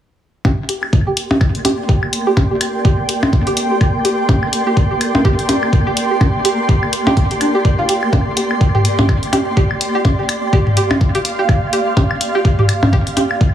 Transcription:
0.45 synth texture A#3 A#4, synth pluck G4, ambient pad G4, kick, percussion blips
0.69 synth pluck G4, closed hi-hat
0.83 claves
0.90 ambient pad D5 C6, kick
1.07 synth pluck G4
1.17 ambient pad G5, closed hi-hat
1.31 synth pluck G4, percussion blips
1.41 kick, claves
1.55 closed hi-hat
1.65 synth pluck G4, closed hi-hat, percussion blips
1.89 synth pluck G4, kick
2.03 claves
2.13 closed hi-hat
2.27 synth pluck G4
2.37 kick, percussion blips
2.51 synth pluck G4
2.61 closed hi-hat, claves
2.85 synth pluck G4, kick
3.09 synth pluck G4, closed hi-hat
3.23 percussion blips, claves
3.33 kick
3.47 synth pluck G4, closed hi-hat
3.57 closed hi-hat
3.71 synth pluck G4
3.81 kick, claves
4.05 synth pluck G4, closed hi-hat
4.29 synth pluck G4, kick, percussion blips
4.43 claves
4.53 closed hi-hat
4.67 synth pluck G4
4.77 kick
4.91 synth pluck G4
5.01 closed hi-hat, claves
5.15 percussion blips
5.25 synth pluck G4, kick
5.39 closed hi-hat
5.49 synth pluck G4, closed hi-hat, percussion blips
5.63 claves
5.73 kick
5.87 synth pluck G4
5.97 closed hi-hat
6.11 synth pluck G4
6.21 kick, percussion blips, claves
6.45 synth pluck G4, closed hi-hat
6.69 synth pluck G4, kick
6.83 claves
6.93 closed hi-hat
7.07 synth pluck G4, percussion blips
7.17 kick, closed hi-hat
7.31 synth pluck G4, closed hi-hat
7.41 synth pluck D4, closed hi-hat, claves
7.55 synth pluck G4
7.65 synth pluck D5, kick
7.79 synth pluck F4
7.89 synth pluck G4, closed hi-hat
8.03 claves
8.13 synth pluck G4, synth texture D5, kick, percussion blips
8.37 synth pluck G4, closed hi-hat
8.51 claves
8.61 kick
8.75 synth pluck G4, mid tom
8.85 closed hi-hat
8.99 synth pluck G4, mid tom, percussion blips
9.09 kick, claves
9.23 closed hi-hat
9.33 synth pluck G4, closed hi-hat, percussion blips
9.57 synth pluck G4, kick
9.71 claves
9.81 closed hi-hat
9.95 synth pluck G4
10.05 kick, percussion blips
10.19 synth pluck G4, ambient pad F5
10.29 closed hi-hat, claves
10.53 synth pluck G4, kick
10.67 mid tom
10.77 synth pluck G4, closed hi-hat
10.91 percussion blips, claves
11.01 kick
11.15 synth pluck G4, closed hi-hat
11.25 closed hi-hat
11.39 synth pluck G4
11.49 kick, claves
11.73 synth pluck G4, closed hi-hat
11.97 synth pluck G4, kick, percussion blips
12.11 claves
12.21 closed hi-hat
12.35 synth pluck G4
12.45 kick
12.59 synth pluck G4, mid tom
12.69 closed hi-hat, claves
12.83 mid tom, percussion blips
12.93 synth pluck G4, kick
13.07 closed hi-hat
13.17 synth pluck G4, closed hi-hat, percussion blips
13.31 claves
13.41 kick

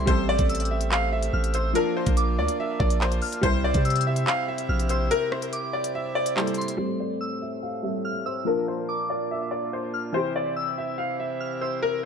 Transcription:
Already playing: harmonium C4 G4
0.06 808-style bass A1, felt piano G3 C4 A4, harmonium A3, upright piano C5, kick, closed hi-hat
0.29 upright piano D5
0.39 808-style bass A1, kick, closed hi-hat
0.49 synth bell E6, closed hi-hat
0.55 closed hi-hat
0.60 closed hi-hat
0.65 closed hi-hat
0.71 upright piano E5
0.81 closed hi-hat
0.91 upright piano F5, clap
1.12 upright piano E5
1.23 closed hi-hat
1.33 808-style bass A1, synth bell F6
1.44 closed hi-hat
1.54 upright piano C5, synth bell E6, closed hi-hat
1.73 felt piano F3 D4 A#4, harmonium A#3 D4 F4, upright piano A#4, closed hi-hat
1.97 upright piano C5
2.06 808-style bass A#1, kick, closed hi-hat
2.17 synth bell D6, closed hi-hat
2.38 808-style bass D2, upright piano D5
2.48 closed hi-hat
2.60 upright piano E5
2.80 808-style bass A#1, upright piano D5, kick
2.90 closed hi-hat
3.01 upright piano C5, clap
3.12 closed hi-hat
3.22 synth bell F6, open hi-hat
3.33 closed hi-hat
3.41 808-style bass C2, harmonium C3 C4 E4 G4, felt piano G3 E4 C5, upright piano C5, kick, closed hi-hat
3.64 upright piano D5
3.74 808-style bass C3, kick, closed hi-hat
3.85 synth bell E6, closed hi-hat
3.90 closed hi-hat
3.96 closed hi-hat
4.01 closed hi-hat
4.07 upright piano E5
4.16 closed hi-hat
4.27 upright piano F5, clap
4.48 upright piano E5
4.58 closed hi-hat
4.69 808-style bass A#1, synth bell F6
4.80 closed hi-hat
4.89 upright piano C5, synth bell E6, closed hi-hat
5.11 upright piano A#4, closed hi-hat
5.32 upright piano C5, cross-stick
5.42 closed hi-hat
5.53 synth bell D6, closed hi-hat
5.73 upright piano D5
5.84 closed hi-hat
5.95 upright piano E5
6.15 upright piano D5
6.26 closed hi-hat
6.36 felt piano G3 E4 A4, upright piano C5, clap
6.47 closed hi-hat
6.54 synth bell C6, closed hi-hat
6.61 closed hi-hat
6.68 closed hi-hat
6.77 harmonium A2 A3 C4 G4, felt piano G3 C4 A4, upright piano C5
7.00 upright piano D5
7.21 synth bell E6
7.42 upright piano E5
7.63 upright piano F5
7.83 felt piano G3 C4 A4, upright piano E5
8.05 synth bell F6
8.26 upright piano C5, synth bell E6
8.45 harmonium A#2 A#3 D4 F4, felt piano F3 D4 A#4, upright piano A#4
8.68 upright piano C5
8.89 synth bell D6
9.10 upright piano D5
9.31 upright piano E5
9.51 upright piano D5
9.73 upright piano C5
9.94 synth bell F6
10.13 harmonium C3 C4 E4 G4, felt piano E3 C4 G4, upright piano C5
10.36 upright piano D5
10.56 synth bell E6
10.78 upright piano E5
10.98 upright piano F5
11.20 upright piano E5
11.40 synth bell F6
11.61 upright piano C5, synth bell E6
11.82 upright piano A#4

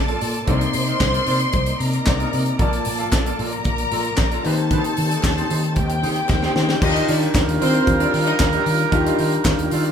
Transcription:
Already playing: fingered electric bass A#1, grand piano A#2 A#3 A4 D5, tonewheel organ A#3 A4 D5, string section A4 A5
0.08 clean electric guitar F4 A4 D5, closed hi-hat
0.21 fingered electric bass A#2, clean electric guitar F4 A4 D5, open hi-hat
0.34 muted clean electric guitar stroke, closed hi-hat
0.47 fingered electric bass C2, grand piano C3 A#3 D#4 D5, tonewheel organ C3 D#4, clean electric guitar D#4 A#4 D5, string section C5 C6, kick, closed hi-hat
0.61 muted clean electric guitar stroke, closed hi-hat
0.73 fingered electric bass C3, muted clean electric guitar stroke, open hi-hat
0.87 clean electric guitar D#4 A#4 D#5, closed hi-hat
1.00 fingered electric bass C2, kick, snare, clap
1.14 clean electric guitar D#4 A#4 D5, closed hi-hat
1.26 fingered electric bass C3, clean electric guitar D#4 A#4 D5, open hi-hat
1.39 muted clean electric guitar stroke, closed hi-hat
1.52 fingered electric bass C2, muted clean electric guitar stroke, kick, closed hi-hat
1.66 muted clean electric guitar stroke, closed hi-hat
1.80 fingered electric bass C3, string section A#4 A#5, open hi-hat
1.92 muted clean electric guitar stroke, closed hi-hat
2.06 fingered electric bass C2, grand piano C3 A#3 D#4 D5, kick, snare, clap
2.19 clean electric guitar D#4 A#4 D5, closed hi-hat
2.32 fingered electric bass C3, clean electric guitar D#4 A#4 D5, open hi-hat
2.46 muted clean electric guitar stroke, closed hi-hat
2.58 fingered electric bass A#1, grand piano A#2 A#3 A#4 D5, tonewheel organ F3, clean electric guitar F4 A4 D5, string section A4 A5, kick, closed hi-hat
2.72 muted clean electric guitar stroke, closed hi-hat
2.85 fingered electric bass A#2, muted clean electric guitar stroke, open hi-hat
2.99 clean electric guitar F4 A4 F5, closed hi-hat
3.12 fingered electric bass A#1, muted clean electric guitar stroke, kick, snare, clap
3.25 clean electric guitar F4 A4 D5, closed hi-hat
3.39 fingered electric bass A#2, clean electric guitar F4 A4 D5, string section A#4 A#5, open hi-hat
3.52 muted clean electric guitar stroke, closed hi-hat
3.64 fingered electric bass A#1, muted clean electric guitar stroke, kick, closed hi-hat
3.78 muted clean electric guitar stroke, closed hi-hat
3.91 fingered electric bass A#2, clean electric guitar F4 A4 D5, open hi-hat
4.05 muted clean electric guitar stroke, closed hi-hat
4.17 fingered electric bass A#1, muted clean electric guitar stroke, kick, snare, clap
4.31 clean electric guitar F4 A4 D5, closed hi-hat
4.43 grand piano D#3 A#3 G4 B4, fingered electric bass D#3, tonewheel organ D#3 C4 G4, clean electric guitar D#4 G4 C5, string section A4 A5, open hi-hat
4.53 grand piano C5
4.57 muted clean electric guitar stroke, closed hi-hat
4.70 clean electric guitar D#4 G4 C5, kick, closed hi-hat
4.84 muted clean electric guitar stroke, closed hi-hat
4.97 fingered electric bass D#3, muted clean electric guitar stroke, open hi-hat
5.11 clean electric guitar D#4 G4 D5, closed hi-hat
5.23 fingered electric bass D#2, muted clean electric guitar stroke, kick, snare, clap
5.37 clean electric guitar D#4 G4 C5, closed hi-hat
5.50 fingered electric bass D#3, clean electric guitar D#4 G4 C5, open hi-hat
5.63 muted clean electric guitar stroke, closed hi-hat
5.76 fingered electric bass D#2, string section G4 G5, muted clean electric guitar stroke, kick, closed hi-hat
5.89 muted clean electric guitar stroke, closed hi-hat
6.03 fingered electric bass D#3, clean electric guitar D#4 G4 C5, open hi-hat
6.16 muted clean electric guitar stroke, closed hi-hat
6.29 fingered electric bass D#2, grand piano D#3 A#3 G4 C5, muted clean electric guitar stroke, kick, snare, clap
6.42 clean electric guitar D#4 G4 C5, snare
6.56 fingered electric bass D#3, clean electric guitar D#4 G4 C5, snare
6.68 muted clean electric guitar stroke, snare
6.81 fingered electric bass D#2, grand piano D#3 D4 F4 G4, tonewheel organ D#3 D4 F4 G4, horn section G3 F4 A#4, string section D#4 D#5, kick, crash
6.95 clean electric guitar F4 G4 D#5, closed hi-hat
7.08 fingered electric bass D#3, string section D4 D5, clean electric guitar F4 G4 D#5, open hi-hat
7.22 muted clean electric guitar stroke, closed hi-hat
7.35 fingered electric bass D#2, kick, snare, clap
7.48 fingered electric bass D#2, muted clean electric guitar stroke, closed hi-hat
7.60 fingered electric bass D#3, string section C4 C5, clean electric guitar F4 G4 D5, open hi-hat
7.74 clean electric guitar F4 G4 D5, closed hi-hat
7.87 fingered electric bass D#2, muted clean electric guitar stroke, kick, closed hi-hat
8.00 string section D4 D5, clean electric guitar F4 G4 D5, closed hi-hat
8.13 fingered electric bass D#3, clean electric guitar F4 G4 D5, open hi-hat
8.26 string section D#4 D#5, muted clean electric guitar stroke, closed hi-hat
8.39 fingered electric bass D#2, kick, snare, clap
8.53 clean electric guitar F4 G4 D5, closed hi-hat
8.66 fingered electric bass D#3, muted clean electric guitar stroke, open hi-hat
8.79 muted clean electric guitar stroke, closed hi-hat
8.91 fingered electric bass D#2, grand piano D#3 D4 F4 G4, muted clean electric guitar stroke, kick, closed hi-hat
9.06 clean electric guitar F4 G4 D#5, closed hi-hat
9.18 fingered electric bass D#3, clean electric guitar F4 G4 D#5, open hi-hat
9.32 muted clean electric guitar stroke, closed hi-hat
9.45 fingered electric bass D#2, muted clean electric guitar stroke, kick, snare, clap
9.59 fingered electric bass D#2, muted clean electric guitar stroke, closed hi-hat
9.71 fingered electric bass D#3, clean electric guitar F4 G4 D5, open hi-hat
9.84 clean electric guitar F4 G4 D5, closed hi-hat

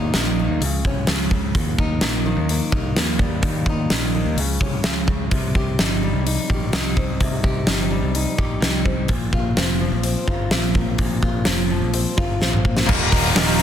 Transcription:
Already playing: picked electric bass D#2, steel-string acoustic guitar D#2 G3 A#3 D#4
0.14 picked electric bass A#1, steel-string acoustic guitar A#3, snare, open hi-hat
0.40 steel-string acoustic guitar D#3
0.48 picked electric bass D#2
0.61 picked electric bass C#2, steel-string acoustic guitar C#3, open hi-hat
0.85 picked electric bass C2, steel-string acoustic guitar C#4, kick
1.07 picked electric bass C#2, steel-string acoustic guitar C#3, snare, open hi-hat
1.31 steel-string acoustic guitar C#3, kick
1.55 picked electric bass D#2, steel-string acoustic guitar D#2, kick, open hi-hat
1.78 steel-string acoustic guitar D#4, kick
2.01 picked electric bass A#1, steel-string acoustic guitar A#3, snare, open hi-hat
2.26 steel-string acoustic guitar D#3
2.37 picked electric bass D#2
2.49 steel-string acoustic guitar A#3, open hi-hat
2.72 picked electric bass C2, steel-string acoustic guitar D#4, kick
2.96 picked electric bass D#2, steel-string acoustic guitar A#3, snare, open hi-hat
3.19 steel-string acoustic guitar G3, kick
3.42 picked electric bass D#2, steel-string acoustic guitar D#2, kick, open hi-hat
3.66 steel-string acoustic guitar D#4, kick
3.90 picked electric bass A#1, steel-string acoustic guitar A#3, snare, open hi-hat
4.15 steel-string acoustic guitar D#3
4.25 picked electric bass D#2
4.36 picked electric bass C#2, steel-string acoustic guitar C#3, open hi-hat
4.60 picked electric bass C2, steel-string acoustic guitar C#4, kick
4.84 picked electric bass C#2, steel-string acoustic guitar C#3, snare, open hi-hat
5.08 steel-string acoustic guitar C#3, kick
5.31 picked electric bass C2, steel-string acoustic guitar C3, kick, open hi-hat
5.55 steel-string acoustic guitar G4, kick
5.78 picked electric bass G1, steel-string acoustic guitar D#4, snare, open hi-hat
6.03 steel-string acoustic guitar G3
6.14 picked electric bass C2
6.26 steel-string acoustic guitar D#4, open hi-hat
6.49 picked electric bass A#1, steel-string acoustic guitar G4, kick
6.73 picked electric bass C2, steel-string acoustic guitar D#4, snare, open hi-hat
6.97 steel-string acoustic guitar C4, kick
7.20 picked electric bass C2, steel-string acoustic guitar C3, kick, open hi-hat
7.43 steel-string acoustic guitar G4, kick
7.67 picked electric bass G1, steel-string acoustic guitar D#4, snare, open hi-hat
7.91 steel-string acoustic guitar G3
8.02 picked electric bass C2
8.15 steel-string acoustic guitar D#4, open hi-hat
8.38 picked electric bass A#1, steel-string acoustic guitar G4, kick
8.61 picked electric bass C2, steel-string acoustic guitar D#4, snare, open hi-hat
8.85 steel-string acoustic guitar C4, kick
9.08 picked electric bass A#1, steel-string acoustic guitar A#2, kick, open hi-hat
9.33 steel-string acoustic guitar F4, kick
9.56 picked electric bass F1, steel-string acoustic guitar C4, snare, open hi-hat
9.80 steel-string acoustic guitar F3
9.92 picked electric bass A#1
10.03 steel-string acoustic guitar C4, open hi-hat
10.28 picked electric bass G1, steel-string acoustic guitar F4, kick
10.51 picked electric bass A#1, steel-string acoustic guitar C4, snare, open hi-hat
10.75 steel-string acoustic guitar A#3, kick
10.98 picked electric bass A#1, steel-string acoustic guitar A#2, kick, open hi-hat
11.23 steel-string acoustic guitar F4, kick
11.45 picked electric bass F1, steel-string acoustic guitar C4, snare, open hi-hat
11.70 steel-string acoustic guitar F3
11.81 picked electric bass A#1
11.94 steel-string acoustic guitar C4, open hi-hat
12.17 picked electric bass G1, steel-string acoustic guitar F4, kick
12.41 picked electric bass A#1, steel-string acoustic guitar C4, snare
12.53 mid tom
12.65 steel-string acoustic guitar A#3, kick
12.77 snare
12.86 picked electric bass D#1, overdriven electric guitar D#2 A#2 D#3 G3 A#3 D#4, string section G4 A#4 D#5 A#5, kick, crash
13.12 distorted electric guitar D#2 A#2, overdriven electric guitar D#3 G3 A#3 D#4, kick, open hi-hat
13.34 picked electric bass D#1, overdriven electric guitar D#2 A#2 D#3 G3 A#3 D#4, snare, open hi-hat
13.59 overdriven electric guitar A#3 D#4, open hi-hat

